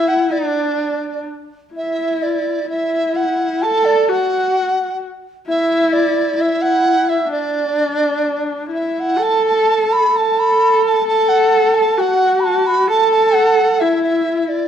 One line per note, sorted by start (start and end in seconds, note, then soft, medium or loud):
0.00 0.31 E4 medium
0.08 0.33 F#5 medium
0.30 1.26 D4 medium
0.30 1.26 D5 medium
1.74 2.65 E4 medium
1.74 2.24 E5 medium
2.22 2.69 D5 medium
2.69 3.64 E4 medium
2.69 3.17 E5 medium
3.16 3.63 F#5 medium
3.62 4.10 A4 loud
3.62 3.86 A5 medium
3.85 4.09 D5 medium
4.08 5.01 F#4 medium
4.08 4.98 F#5 medium
5.46 6.34 E4 loud
5.46 5.94 E5 medium
5.93 6.42 D5 medium
6.37 7.26 E4 medium
6.37 6.63 E5 medium
6.62 7.10 F#5 loud
7.09 7.31 E5 medium
7.29 8.68 D4 medium
7.29 8.44 D5 medium
8.70 9.19 E4 medium
8.74 9.01 E5 medium
9.00 9.24 F#5 medium
9.17 10.10 A4 medium
9.23 9.45 A5 medium
9.46 9.94 A5 medium
9.92 10.18 B5 loud
10.11 11.01 A4 medium
10.17 10.41 A5 medium
10.39 10.84 B5 medium
10.86 11.06 A5 medium
11.04 11.99 A4 loud
11.04 11.30 A5 loud
11.28 11.76 F#5 medium
11.74 12.01 A5 medium
11.97 12.90 F#4 medium
11.97 12.41 F#5 medium
12.39 12.46 B5 medium
12.44 12.68 A5 medium
12.66 12.88 B5 medium
12.88 13.82 A4 loud
12.88 13.10 A5 loud
13.11 13.36 A5 medium
13.35 13.81 F#5 medium
13.80 14.68 E4 medium
13.80 14.02 E5 medium
14.03 14.42 E5 medium
14.42 14.50 E5 medium
14.48 14.68 D5 medium